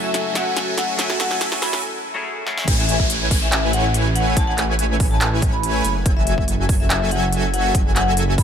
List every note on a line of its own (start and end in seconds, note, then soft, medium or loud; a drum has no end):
0.00 1.83 F#1 medium
0.00 0.32 F#3 medium
0.00 0.33 F#3 medium
0.00 0.32 A3 medium
0.00 0.33 C#4 medium
0.00 0.33 E4 medium
0.00 0.33 F#4 medium
0.00 0.33 A4 medium
0.00 0.33 E5 medium
0.00 0.10 E5 medium
0.00 0.33 G#5 medium
0.00 0.34 G#5 loud
0.00 riser medium
0.14 0.21 E5 medium
0.14 snare medium
0.14 closed hi-hat medium
0.33 0.95 F#3 medium
0.33 0.96 F#3 medium
0.33 0.96 A3 medium
0.33 0.96 C#4 medium
0.33 0.97 E4 medium
0.33 0.96 F#4 medium
0.33 0.97 F#4 medium
0.33 0.96 A4 medium
0.33 0.96 E5 medium
0.33 0.50 F#5 medium
0.33 0.96 G#5 medium
0.33 snare medium
0.33 closed hi-hat medium
0.56 snare medium
0.56 closed hi-hat medium
0.77 0.93 F#5 medium
0.77 snare medium
0.77 closed hi-hat medium
0.97 2.12 F#3 medium
0.97 1.83 F#3 medium
0.97 2.12 A3 medium
0.97 2.13 C#4 medium
0.97 2.13 E4 medium
0.97 1.83 F#4 medium
0.97 1.83 A4 medium
0.97 1.83 E5 medium
0.97 1.83 G#5 medium
0.97 snare medium
0.97 closed hi-hat medium
1.01 2.14 G#5 loud
1.10 snare medium
1.20 1.35 F#5 medium
1.20 snare loud
1.20 closed hi-hat medium
1.31 snare medium
1.41 snare medium
1.41 closed hi-hat medium
1.52 snare medium
1.62 1.77 B5 medium
1.62 snare loud
1.62 open hi-hat medium
1.73 snare medium
1.83 swell medium
2.14 2.44 F#3 medium
2.14 2.44 A3 medium
2.14 2.44 C#4 medium
2.14 2.44 E4 medium
2.14 2.45 G#4 loud
2.46 2.65 F#3 medium
2.46 2.65 A3 medium
2.46 2.65 C#4 medium
2.46 2.65 E4 medium
2.46 2.66 G#4 loud
2.46 snare medium
2.58 snare medium
2.68 5.83 A1 medium
2.68 3.71 A3 medium
2.68 3.71 E4 medium
2.68 3.71 B4 medium
2.68 3.71 C#5 medium
2.68 3.71 G#5 medium
2.68 kick loud
2.68 closed hi-hat medium
2.68 crash loud
2.68 downlifter medium
2.79 2.85 E5 medium
2.89 2.96 E5 medium
2.89 closed hi-hat medium
3.00 kick medium
3.10 closed hi-hat medium
3.31 kick loud
3.31 open hi-hat medium
3.42 3.49 E5 medium
3.52 3.59 E5 medium
3.52 clap loud
3.52 closed hi-hat medium
3.73 4.34 A3 medium
3.73 4.34 E4 medium
3.73 4.34 B4 medium
3.73 4.34 C#5 medium
3.73 3.88 F#5 medium
3.73 4.34 G#5 medium
3.73 closed hi-hat medium
3.94 closed hi-hat medium
4.16 4.31 F#5 medium
4.16 closed hi-hat medium
4.37 5.40 A3 medium
4.37 5.40 E4 medium
4.37 5.40 B4 medium
4.37 5.40 C#5 medium
4.37 5.40 G#5 medium
4.37 4.45 A5 medium
4.37 kick loud
4.37 closed hi-hat medium
4.47 4.62 F#5 medium
4.58 clap medium
4.58 closed hi-hat medium
4.79 closed hi-hat medium
5.00 kick loud
5.00 open hi-hat medium
5.11 5.26 A5 medium
5.21 clap loud
5.21 closed hi-hat medium
5.42 5.83 A3 medium
5.42 5.83 E4 medium
5.42 5.83 B4 medium
5.42 5.83 C#5 medium
5.42 5.83 G#5 medium
5.42 kick loud
5.42 closed hi-hat medium
5.53 5.89 B5 medium
5.63 closed hi-hat medium
5.85 8.43 F#1 medium
5.85 closed hi-hat medium
6.06 7.09 F#3 medium
6.06 7.09 F#4 medium
6.06 7.09 A4 medium
6.06 7.09 E5 medium
6.06 7.09 G#5 medium
6.06 kick loud
6.06 closed hi-hat medium
6.17 6.23 E5 medium
6.27 6.34 E5 medium
6.27 closed hi-hat medium
6.38 kick medium
6.48 closed hi-hat medium
6.69 kick loud
6.69 open hi-hat medium
6.80 6.87 E5 medium
6.90 6.97 E5 medium
6.90 clap loud
6.90 closed hi-hat medium
7.11 7.72 F#3 medium
7.11 7.72 F#4 medium
7.11 7.72 A4 medium
7.11 7.72 E5 medium
7.11 7.26 F#5 medium
7.11 7.72 G#5 medium
7.11 closed hi-hat medium
7.33 closed hi-hat medium
7.54 7.69 F#5 loud
7.54 closed hi-hat medium
7.75 8.43 F#3 medium
7.75 8.43 F#4 medium
7.75 8.43 A4 medium
7.75 8.43 E5 medium
7.75 8.43 G#5 medium
7.75 kick loud
7.75 closed hi-hat medium
7.96 8.11 F#5 medium
7.96 clap medium
7.96 closed hi-hat medium
8.17 closed hi-hat medium
8.38 8.43 B5 medium
8.38 kick loud
8.38 open hi-hat medium